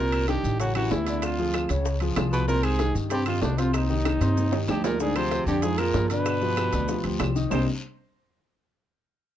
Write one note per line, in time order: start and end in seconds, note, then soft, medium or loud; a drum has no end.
0.00 0.38 C2 medium
0.00 0.25 A#2 medium
0.00 0.23 C3 medium
0.00 0.23 C4 medium
0.00 0.26 A#4 loud
0.00 0.23 C5 medium
0.12 high timbale medium
0.12 claves medium
0.12 maracas soft
0.28 0.57 G2 medium
0.28 0.54 D#3 medium
0.28 0.55 D#4 medium
0.28 0.58 G4 loud
0.28 0.55 G4 medium
0.28 high bongo medium
0.28 high timbale medium
0.28 low timbale medium
0.28 short guiro medium
0.28 maracas soft
0.44 0.88 A1 loud
0.44 short guiro medium
0.44 maracas medium
0.60 0.75 F#2 medium
0.60 0.73 C#3 medium
0.60 0.73 C#4 medium
0.60 0.75 F#4 medium
0.60 0.73 C#5 medium
0.60 high bongo medium
0.60 high timbale medium
0.60 long guiro medium
0.60 maracas medium
0.75 0.92 F#2 medium
0.75 1.01 E3 medium
0.75 1.02 E4 medium
0.75 0.93 F#4 medium
0.75 1.02 G4 medium
0.75 high timbale medium
0.75 claves medium
0.75 maracas soft
0.91 1.64 D2 medium
0.91 1.25 E2 medium
0.91 1.25 E4 medium
0.91 high bongo medium
0.91 low bongo medium
0.91 low timbale medium
0.91 short guiro medium
0.91 maracas soft
1.06 1.32 D3 medium
1.06 1.33 D4 medium
1.06 1.33 D5 medium
1.06 high timbale medium
1.06 short guiro medium
1.06 maracas medium
1.22 1.70 F2 medium
1.22 1.70 F4 medium
1.22 high bongo medium
1.22 high timbale medium
1.22 long guiro medium
1.22 claves medium
1.22 maracas medium
1.39 1.51 F3 medium
1.39 1.52 F4 medium
1.39 1.52 G#4 medium
1.39 high bongo soft
1.39 maracas soft
1.54 1.67 F3 medium
1.54 1.67 F4 medium
1.54 1.68 G#4 medium
1.54 high bongo medium
1.54 high timbale medium
1.54 low timbale medium
1.54 short guiro medium
1.54 claves medium
1.54 maracas soft
1.69 2.13 C#2 loud
1.69 1.95 C#3 medium
1.69 1.96 C#4 medium
1.69 1.96 C#5 medium
1.69 high bongo soft
1.69 high timbale medium
1.69 short guiro medium
1.69 maracas medium
1.85 high bongo medium
1.85 long guiro medium
1.85 maracas medium
2.00 2.14 F3 medium
2.00 2.14 F4 medium
2.00 2.14 G#4 medium
2.00 high timbale medium
2.00 maracas soft
2.16 2.90 C2 medium
2.16 2.43 F3 medium
2.16 2.43 F4 medium
2.16 2.43 G#4 medium
2.16 high bongo medium
2.16 low bongo medium
2.16 high timbale loud
2.16 low timbale medium
2.16 short guiro medium
2.16 claves medium
2.16 maracas soft
2.33 2.47 B2 medium
2.33 2.47 B4 medium
2.33 high bongo soft
2.33 short guiro medium
2.33 maracas medium
2.48 2.64 A#2 medium
2.48 2.74 C3 medium
2.48 2.74 C4 medium
2.48 2.65 A#4 loud
2.48 2.74 C5 medium
2.48 high bongo medium
2.48 long guiro medium
2.48 maracas medium
2.63 2.95 G#2 medium
2.63 2.95 G#4 loud
2.63 high timbale medium
2.63 claves medium
2.63 maracas soft
2.79 3.06 D#3 medium
2.79 3.06 D#4 medium
2.79 3.06 G4 medium
2.79 high bongo medium
2.79 high timbale medium
2.79 low timbale medium
2.79 short guiro medium
2.79 maracas soft
2.95 3.39 G2 loud
2.95 short guiro medium
2.95 maracas medium
3.10 3.25 G2 medium
3.10 3.24 C3 medium
3.10 3.24 C4 medium
3.10 3.26 G4 loud
3.10 3.24 C5 medium
3.10 high bongo medium
3.10 high timbale medium
3.10 long guiro medium
3.10 maracas medium
3.26 3.41 F2 medium
3.26 3.52 D#3 medium
3.26 3.53 D#4 medium
3.26 3.42 F4 medium
3.26 3.53 G4 medium
3.26 high timbale medium
3.26 claves medium
3.26 maracas soft
3.42 4.15 C2 medium
3.42 3.61 D2 medium
3.42 3.60 D4 medium
3.42 high bongo medium
3.42 low bongo medium
3.42 low timbale medium
3.42 short guiro medium
3.42 maracas soft
3.58 3.74 F2 medium
3.58 3.84 C3 medium
3.58 3.84 C4 medium
3.58 3.73 F4 medium
3.58 3.84 C5 medium
3.58 high timbale medium
3.58 short guiro medium
3.58 maracas medium
3.73 4.65 D#2 medium
3.73 4.64 D#4 medium
3.73 high bongo medium
3.73 high timbale medium
3.73 long guiro medium
3.73 claves medium
3.73 maracas medium
3.90 4.03 D#3 medium
3.90 4.03 D#4 medium
3.90 4.03 G4 medium
3.90 high bongo soft
3.90 maracas soft
4.05 4.18 D#3 medium
4.05 4.18 D#4 medium
4.05 4.18 G4 medium
4.05 high bongo medium
4.05 high timbale medium
4.05 low timbale medium
4.05 short guiro medium
4.05 claves medium
4.05 maracas soft
4.21 4.65 G2 loud
4.21 4.47 C3 medium
4.21 4.47 C4 medium
4.21 4.47 C5 medium
4.21 high timbale medium
4.21 short guiro medium
4.21 maracas medium
4.37 low bongo medium
4.37 long guiro medium
4.37 maracas medium
4.52 4.66 D#3 medium
4.52 4.66 D#4 medium
4.52 4.66 G4 medium
4.52 low bongo loud
4.52 high timbale loud
4.52 maracas soft
4.68 5.41 D2 medium
4.68 4.84 G2 medium
4.68 4.95 F3 medium
4.68 4.95 D#4 medium
4.68 4.95 G4 medium
4.68 4.84 G4 medium
4.68 low bongo medium
4.68 low timbale medium
4.68 short guiro medium
4.68 claves medium
4.68 maracas soft
4.84 4.99 A#2 medium
4.84 4.99 A#4 medium
4.84 low bongo loud
4.84 low timbale loud
4.84 short guiro medium
4.84 maracas medium
5.00 5.18 G#2 medium
5.00 5.13 D3 medium
5.00 5.13 D4 medium
5.00 5.18 G#4 loud
5.00 5.13 D5 medium
5.00 high bongo medium
5.00 long guiro medium
5.00 maracas medium
5.16 5.47 C3 medium
5.16 5.42 F3 medium
5.16 5.42 F4 medium
5.16 5.42 G#4 medium
5.16 5.46 C5 loud
5.16 high timbale medium
5.16 claves medium
5.16 maracas soft
5.31 high bongo medium
5.31 high timbale medium
5.31 low timbale medium
5.31 short guiro medium
5.31 maracas soft
5.46 5.91 F2 loud
5.46 5.65 G2 medium
5.46 5.60 D3 medium
5.46 5.60 D4 medium
5.46 5.63 G4 medium
5.46 5.61 D5 medium
5.46 short guiro medium
5.46 maracas medium
5.62 5.81 G#2 medium
5.62 5.76 F3 medium
5.62 5.76 F4 medium
5.62 5.80 G#4 loud
5.62 5.76 G#4 medium
5.62 high bongo medium
5.62 high timbale medium
5.62 long guiro medium
5.62 maracas medium
5.78 6.10 A#2 medium
5.78 6.05 F3 medium
5.78 6.05 F4 medium
5.78 6.05 G#4 medium
5.78 6.08 A#4 medium
5.78 high timbale medium
5.78 claves medium
5.78 maracas soft
5.94 6.67 G2 medium
5.94 high bongo medium
5.94 low bongo medium
5.94 low timbale medium
5.94 short guiro medium
5.94 maracas soft
6.09 7.16 B2 medium
6.09 6.36 D3 medium
6.09 6.36 D4 medium
6.09 7.15 B4 loud
6.09 6.36 D5 medium
6.09 high timbale medium
6.09 short guiro medium
6.09 maracas medium
6.26 high bongo medium
6.26 high timbale medium
6.26 long guiro medium
6.26 claves medium
6.26 maracas medium
6.41 6.67 F3 medium
6.41 6.68 F4 medium
6.41 6.68 G4 medium
6.41 high bongo soft
6.41 maracas soft
6.57 high bongo medium
6.57 high timbale loud
6.57 low timbale medium
6.57 short guiro medium
6.57 claves medium
6.57 maracas soft
6.72 7.02 D2 medium
6.72 6.86 D3 medium
6.72 6.86 D4 medium
6.72 6.86 D5 medium
6.72 high bongo soft
6.72 high timbale medium
6.72 short guiro medium
6.72 maracas medium
6.88 7.02 F3 medium
6.88 7.02 F4 medium
6.88 7.02 G4 medium
6.88 high bongo medium
6.88 long guiro medium
6.88 maracas medium
7.04 7.19 D2 medium
7.04 7.30 F3 medium
7.04 7.30 F4 medium
7.04 7.31 G4 medium
7.04 high timbale medium
7.04 maracas soft
7.20 7.48 C2 medium
7.20 high bongo medium
7.20 low bongo medium
7.20 high timbale medium
7.20 low timbale medium
7.20 short guiro medium
7.20 claves medium
7.20 maracas soft
7.35 7.48 D#3 medium
7.35 7.49 D#4 medium
7.35 7.49 D#5 medium
7.35 high bongo soft
7.35 short guiro medium
7.35 maracas medium
7.50 7.66 C2 medium
7.50 7.65 C3 medium
7.50 7.66 C3 medium
7.50 7.66 G3 medium
7.50 7.66 A#3 medium
7.50 7.66 C4 medium
7.50 7.66 D4 medium
7.50 7.66 D#4 loud
7.50 7.66 C5 medium
7.50 low bongo medium
7.50 low timbale medium
7.50 long guiro medium
7.50 claves medium
7.50 maracas loud